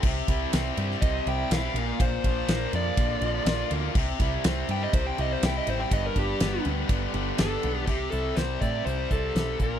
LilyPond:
<<
  \new Staff \with { instrumentName = "Lead electric guitar" } { \time 4/4 \key c \major \tempo 4 = 122 r2 ees''8 g''8 f''4 | c''4. d''2 r8 | r4. g''16 ees''16 c''16 g''16 ees''16 c''16 g''16 ees''16 c''16 g''16 | ees''16 bes'16 g'4 r4. a'4 |
g'8 a'8 c''8 d''8 c''8 a'4 bes'8 | }
  \new Staff \with { instrumentName = "Tonewheel organ" } { \time 4/4 \key c \major <c' e' g' e''>2.~ <c' e' g' e''>8 <bes d' f' d''>8~ | <bes d' f' d''>1 | <g c' e' c''>1 | <g b d' b'>1 |
r1 | }
  \new Staff \with { instrumentName = "Distorted electric guitar" } { \clef bass \time 4/4 \key c \major c8 g8 c'8 g8 c8 g8 e'8 bes,8 | bes,8 f8 bes8 f8 d8 f8 f'8 bes8 | c8 g8 c'8 g8 c8 g8 e'8 c'8 | g,8 g8 b8 g8 d8 g8 d'8 b8 |
c8 g8 c8 c'8 g8 c8 g8 bes,8 | }
  \new Staff \with { instrumentName = "Overdriven electric guitar" } { \clef bass \time 4/4 \key c \major c8 e'8 c'8 g8 c'8 e'8 g8 bes,8 | bes,8 f'8 bes8 f8 bes8 f'8 f8 d8 | c8 e'8 c'8 g8 c'8 e'8 g8 c8 | g,8 d'8 b8 g8 b8 d'8 g8 d8 |
c8 c8 g8 e'8 g8 c'8 c8 bes,8 | }
  \new Staff \with { instrumentName = "Picked electric bass" } { \clef bass \time 4/4 \key c \major c,8 c,8 c,8 g,8 c,8 c,8 b,,8 bes,,8 | bes,,8 bes,,8 bes,,8 f,8 bes,,8 bes,,8 bes,,8 d,8 | c,8 c,8 c,8 g,8 c,8 c,8 c,8 a,,8 | g,,8 g,,8 g,,8 d,8 g,,8 g,,8 g,,8 b,,8 |
c,8 c,8 c,8 a,8 c,8 c,8 b,,8 bes,,8 | }
  \new DrumStaff \with { instrumentName = "Drums" } \drummode { \time 4/4 <cymc bd>8 <bd cymr>8 <cymr sn>8 cymr16 sn16 <bd cymr>8 cymr8 <cymr sn>8 cymr8 | <bd cymr>8 <bd cymr>8 <cymr sn>8 cymr8 <bd cymr>8 cymr8 <cymr sn>8 cymr8 | <cymc bd>8 <bd cymr>8 <cymr sn>8 cymr8 <bd cymr>8 cymr8 <cymr sn>8 cymr8 | <bd cymr>8 <bd cymr>8 <cymr sn>8 cymr8 <bd cymr>8 cymr8 <cymr sn>8 cymr8 |
<cymc bd>8 hh8 <hh sn>8 <hh bd>8 hh8 <hh bd>8 <hh sn>8 <hh bd>8 | }
>>